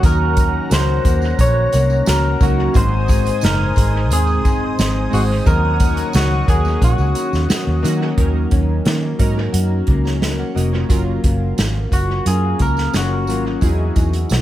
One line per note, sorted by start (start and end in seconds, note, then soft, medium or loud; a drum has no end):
0.00 0.58 D#2 medium
0.00 3.53 D#3 medium
0.00 0.02 F#3 medium
0.00 1.17 F#3 medium
0.00 0.35 A#3 medium
0.00 0.03 C#4 medium
0.00 1.37 C#4 medium
0.00 2.70 C#4 medium
0.00 1.18 C#4 medium
0.00 0.04 D#4 medium
0.00 1.18 D#4 medium
0.00 0.68 F#4 medium
0.00 2.76 F#4 medium
0.00 2.70 F#5 medium
0.00 2.71 A#5 medium
0.00 kick loud
0.00 closed hi-hat medium
0.00 tambourine medium
0.05 1.18 A#4 medium
0.05 0.68 A#4 loud
0.37 1.03 A#3 medium
0.37 kick loud
0.37 closed hi-hat medium
0.37 tambourine soft
0.69 0.98 C#2 loud
0.69 2.06 F#4 medium
0.69 1.40 C5 loud
0.69 snare loud
0.69 closed hi-hat medium
0.69 tambourine medium
1.05 1.32 D#2 medium
1.05 1.72 A#3 medium
1.05 kick medium
1.05 closed hi-hat medium
1.05 tambourine soft
1.22 tambourine soft
1.38 1.66 A#1 medium
1.38 2.81 C#4 medium
1.38 2.09 C#5 loud
1.38 kick medium
1.38 closed hi-hat loud
1.38 tambourine soft
1.72 2.00 C2 medium
1.72 2.40 A#3 medium
1.72 closed hi-hat medium
1.72 tambourine soft
1.90 tambourine soft
2.06 2.34 C#2 medium
2.06 2.82 F#4 medium
2.06 2.43 A#4 medium
2.06 snare loud
2.06 closed hi-hat medium
2.06 tambourine medium
2.40 2.68 C#2 medium
2.40 2.69 F#3 medium
2.40 2.81 A#3 medium
2.40 2.69 C#4 medium
2.40 2.70 D#4 medium
2.40 2.77 F#4 medium
2.40 2.70 A#4 medium
2.40 kick loud
2.40 closed hi-hat medium
2.40 tambourine medium
2.73 3.29 G#1 loud
2.73 5.46 G#2 medium
2.73 3.88 G#3 medium
2.73 3.89 C4 medium
2.73 3.89 D#4 medium
2.73 5.43 C5 medium
2.73 3.90 C5 medium
2.73 3.44 C5 loud
2.73 5.43 G#5 medium
2.73 8.14 D#6 medium
2.73 kick loud
2.73 closed hi-hat medium
2.73 tambourine medium
3.08 3.76 G#3 medium
3.08 kick loud
3.08 closed hi-hat medium
3.08 tambourine medium
3.26 closed hi-hat medium
3.26 tambourine soft
3.41 3.70 F#1 loud
3.41 4.78 D#4 medium
3.41 4.13 A#4 medium
3.41 snare loud
3.41 closed hi-hat medium
3.41 tambourine medium
3.76 4.11 G#1 medium
3.76 4.44 G#3 medium
3.76 kick medium
3.76 closed hi-hat medium
3.76 tambourine soft
4.11 4.45 D#2 medium
4.11 5.54 C4 medium
4.11 5.10 G#4 medium
4.11 closed hi-hat loud
4.11 tambourine soft
4.27 tambourine soft
4.45 4.72 F#1 medium
4.45 5.12 G#3 medium
4.45 kick medium
4.45 closed hi-hat medium
4.45 tambourine soft
4.79 5.06 G#1 medium
4.79 6.14 D#4 medium
4.79 snare loud
4.79 closed hi-hat medium
4.79 tambourine medium
5.10 5.40 G#1 medium
5.10 5.40 G#3 medium
5.10 5.53 G#3 medium
5.10 5.40 C4 medium
5.10 5.41 D#4 medium
5.10 5.23 F#4 medium
5.10 5.41 C5 medium
5.10 tambourine medium
5.14 open hi-hat medium
5.45 6.01 D#2 loud
5.45 8.17 D#3 medium
5.45 6.60 F#3 medium
5.45 6.60 C#4 medium
5.45 6.61 D#4 medium
5.45 6.61 A#4 medium
5.45 6.15 A#4 loud
5.45 8.15 C#5 medium
5.45 8.15 F#5 medium
5.45 kick loud
5.45 closed hi-hat medium
5.45 tambourine medium
5.80 6.48 A#3 medium
5.80 kick medium
5.80 closed hi-hat medium
5.80 tambourine soft
5.97 closed hi-hat medium
5.97 tambourine soft
6.13 6.42 C#2 loud
6.13 7.48 F#4 medium
6.13 6.49 F#4 medium
6.13 snare loud
6.13 closed hi-hat medium
6.13 tambourine medium
6.48 6.75 D#2 medium
6.48 7.15 A#3 medium
6.48 6.84 G#4 medium
6.48 kick medium
6.48 closed hi-hat medium
6.48 tambourine soft
6.65 tambourine soft
6.81 6.95 A#1 medium
6.81 8.51 C#4 medium
6.81 7.47 F#4 medium
6.81 kick medium
6.81 closed hi-hat loud
6.81 tambourine soft
6.98 7.12 C#2 loud
6.98 tambourine soft
7.15 7.82 A#3 medium
7.15 closed hi-hat medium
7.15 tambourine soft
7.33 7.47 D#2 medium
7.33 snare soft
7.33 tambourine soft
7.49 9.52 F#4 medium
7.49 muted fingered electric bass stroke soft
7.49 snare loud
7.49 closed hi-hat medium
7.49 tambourine medium
7.67 7.81 D#2 medium
7.83 8.11 D#3 medium
7.83 8.12 F#3 medium
7.83 8.85 A#3 medium
7.83 8.12 C#4 medium
7.83 8.13 D#4 medium
7.83 8.13 F#4 loud
7.83 closed hi-hat medium
7.83 tambourine medium
8.18 8.45 D#2 loud
8.18 10.88 D#3 medium
8.18 9.04 F#3 medium
8.18 9.04 C#4 medium
8.18 9.04 D#4 medium
8.18 9.05 A#4 medium
8.18 kick medium
8.18 closed hi-hat medium
8.51 8.79 D#2 medium
8.51 9.18 C#4 medium
8.51 kick medium
8.51 closed hi-hat medium
8.85 9.13 D#3 loud
8.85 9.87 A#3 medium
8.85 snare loud
8.85 closed hi-hat medium
9.19 9.47 G#2 medium
9.19 10.34 F#3 medium
9.19 10.21 C#4 medium
9.19 10.34 C#4 medium
9.19 10.35 D#4 medium
9.19 9.88 A#4 loud
9.19 kick medium
9.19 closed hi-hat medium
9.52 9.81 F#2 loud
9.52 10.89 F#4 medium
9.52 closed hi-hat loud
9.87 10.43 C#2 medium
9.87 10.54 A#3 medium
9.87 kick medium
9.87 closed hi-hat medium
10.05 10.37 C#5 soft
10.05 10.37 A#5 medium
10.05 snare soft
10.21 11.23 C#4 medium
10.21 snare loud
10.21 closed hi-hat medium
10.39 10.55 A#4 medium
10.39 10.55 F#5 medium
10.55 10.83 F1 medium
10.55 11.91 A#3 medium
10.55 10.72 F#4 medium
10.55 10.72 D#5 medium
10.55 closed hi-hat medium
10.72 10.89 F4 soft
10.72 11.05 C#5 medium
10.89 11.17 F#1 medium
10.89 12.04 F#3 medium
10.89 13.62 F#3 medium
10.89 12.05 C#4 medium
10.89 11.58 F4 medium
10.89 12.05 F4 medium
10.89 12.05 A#4 medium
10.89 kick loud
10.89 closed hi-hat medium
10.89 tambourine medium
11.23 11.52 F#1 loud
11.23 12.92 C#4 soft
11.23 kick medium
11.23 closed hi-hat medium
11.23 tambourine soft
11.58 11.85 G#1 medium
11.58 snare loud
11.58 closed hi-hat medium
11.58 tambourine medium
11.91 12.19 F#1 medium
11.91 12.59 A#3 medium
11.91 12.27 F#4 medium
11.91 kick medium
11.91 closed hi-hat medium
11.91 tambourine soft
12.25 12.53 F#2 medium
12.25 13.12 F#3 medium
12.25 13.12 C#4 medium
12.25 13.13 F4 medium
12.25 12.62 G#4 medium
12.25 13.13 A#4 medium
12.25 closed hi-hat loud
12.25 tambourine soft
12.59 12.87 C#2 medium
12.59 13.27 A#3 medium
12.59 12.93 A#4 loud
12.59 kick medium
12.59 closed hi-hat medium
12.59 tambourine soft
12.77 snare soft
12.77 tambourine soft
12.93 13.28 F#1 medium
12.93 13.69 C#4 medium
12.93 13.43 F#4 medium
12.93 snare loud
12.93 closed hi-hat medium
12.93 tambourine medium
13.27 13.55 G#1 medium
13.27 13.57 F#3 medium
13.27 13.69 A#3 medium
13.27 13.57 C#4 medium
13.27 13.58 F4 medium
13.27 13.58 A#4 medium
13.27 closed hi-hat medium
13.27 tambourine medium
13.61 13.90 E2 medium
13.61 14.41 E3 medium
13.61 14.41 F#3 medium
13.61 14.41 D#4 medium
13.61 14.41 E4 medium
13.61 14.31 F#4 medium
13.61 14.41 G#4 medium
13.61 kick medium
13.61 closed hi-hat medium
13.61 tambourine soft
13.96 14.24 E2 medium
13.96 14.41 D#4 medium
13.96 kick medium
13.96 closed hi-hat medium
13.96 tambourine soft
14.13 closed hi-hat medium
14.13 tambourine soft
14.29 14.41 B1 medium
14.29 14.41 F#4 medium
14.29 snare loud
14.29 closed hi-hat medium
14.29 tambourine medium